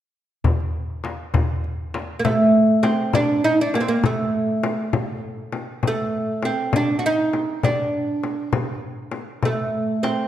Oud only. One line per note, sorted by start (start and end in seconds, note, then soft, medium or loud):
2.19 2.24 A#3 medium
2.25 2.86 A3 medium
2.83 3.14 C4 medium
3.15 3.44 D4 medium
3.44 3.60 D#4 medium
3.61 3.76 D4 medium
3.75 3.82 A#3 medium
3.81 3.88 C4 medium
3.88 4.05 A#3 medium
4.06 5.21 A3 medium
5.88 6.47 A3 medium
6.45 6.75 C4 medium
6.76 6.98 D4 medium
6.99 7.05 F#4 medium
7.06 7.64 D#4 medium
7.64 8.80 D4 medium
9.45 10.06 A3 medium
10.03 10.28 C4 medium